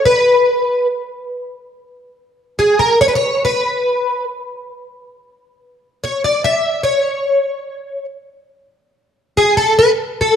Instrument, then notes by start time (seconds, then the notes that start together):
twelve-string acoustic guitar
0.05 B4
2.59 G#4
2.79 A#4
3.01 C#5
3.08 B4
3.15 C#5
3.45 B4
6.04 C#5
6.24 D5
6.44 E5
6.83 C#5
9.37 G#4
9.57 A4
9.79 B4
10.21 A4